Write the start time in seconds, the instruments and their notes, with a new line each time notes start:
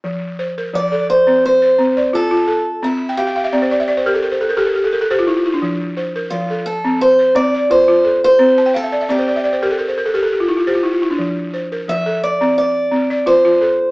0.04 balafon F3
0.39 balafon C5
0.58 balafon A#4
0.74 balafon F3, steel-string acoustic guitar D5
0.92 balafon A4
1.10 steel-string acoustic guitar C5
1.27 balafon C4
1.46 steel-string acoustic guitar C5
1.62 balafon C5
1.79 balafon C4
1.97 balafon D5
2.13 balafon F4, steel-string acoustic guitar A4
2.31 balafon F4
2.47 balafon A4
2.83 balafon C4, steel-string acoustic guitar E4
3.09 balafon G5
3.17 steel-string acoustic guitar G4, balafon F5
3.27 balafon G5
3.36 balafon F5
3.44 balafon E5
3.53 balafon C4 D5
3.62 balafon C5
3.71 balafon D5
3.80 balafon E5
3.88 balafon D5
3.97 balafon C5
4.06 balafon G4 A#4
4.15 balafon A4
4.23 balafon A#4
4.31 balafon C5
4.41 balafon A4
4.49 balafon A#4
4.57 balafon G4 A4
4.66 balafon A#4
4.75 balafon G4
4.84 balafon A4
4.93 balafon A#4
5.01 balafon A4
5.11 balafon G4 C5
5.19 balafon F4
5.27 balafon E4
5.37 balafon F4
5.46 balafon E4
5.54 balafon D4
5.62 balafon F3
5.97 balafon C5
6.16 balafon A#4
6.30 balafon F3, steel-string acoustic guitar F4
6.50 balafon A4
6.66 steel-string acoustic guitar A4
6.84 balafon C4
7.01 steel-string acoustic guitar C5
7.19 balafon C5
7.35 balafon C4, steel-string acoustic guitar D5
7.54 balafon D5
7.70 balafon F4, steel-string acoustic guitar C5
7.88 balafon F4
8.05 balafon A4
8.24 steel-string acoustic guitar C5
8.39 balafon C4
8.58 balafon A5
8.66 balafon G5
8.74 steel-string acoustic guitar A4, balafon F5
8.83 balafon E5
8.92 balafon D5
9.01 balafon E5
9.09 balafon C4 D5, steel-string acoustic guitar G4
9.19 balafon C5
9.28 balafon D5
9.36 balafon E5
9.44 balafon D5
9.53 balafon C5
9.62 balafon G4 A#4
9.71 balafon A4
9.79 balafon A#4
9.88 balafon C5
9.98 balafon A#4
10.06 balafon A4
10.14 balafon G4 A#4
10.23 balafon A4
10.32 balafon G4
10.40 balafon F4
10.48 balafon E4
10.57 balafon F4
10.67 balafon G4 C5
10.75 balafon F4
10.83 balafon E4
10.93 balafon F4
11.02 balafon E4
11.10 balafon D4
11.19 balafon F3
11.54 balafon C5
11.72 balafon A#4
11.88 balafon F3, steel-string acoustic guitar E5
12.06 balafon A4
12.23 steel-string acoustic guitar D5
12.41 balafon C4
12.58 steel-string acoustic guitar D5
12.92 balafon C4
13.10 balafon D5
13.26 balafon F4, steel-string acoustic guitar C5
13.45 balafon F4
13.61 balafon A4